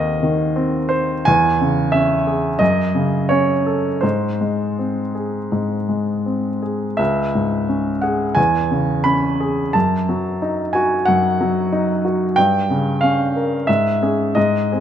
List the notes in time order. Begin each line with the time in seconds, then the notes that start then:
Already playing: D#2 D#3 C4 C5 D#5 F5 F#5
0.23 D#3
0.56 C4
0.89 C5
1.25 E2 G#5
1.61 C#3
1.92 C#4 E5
2.27 G#4
2.59 F#2 D#5
2.95 C#3
3.29 C#4 C#5
3.66 A4
4.01 G#2 C5
4.41 G#3
4.79 C4
5.15 G#4
5.52 G#2
5.89 G#3
6.26 C4
6.62 G#4
6.97 C#2 E5
7.35 G#2
7.69 C#4
8.02 G#4 F#5
8.35 E2 G#5
8.71 C#3
9.04 C#4 B5
9.40 G#4
9.73 F#2 A5
10.09 F#3
10.42 D#4
10.73 F#4 G#5
11.05 F#2 F#5
11.41 F#3
11.72 D#4
12.05 F#4
12.36 G2 G5
12.70 C#3
13.01 C#4 F5
13.36 A#4
13.67 G#2 E5
14.02 C#4 G#4
14.35 G#2 D#5
14.72 C4 G#4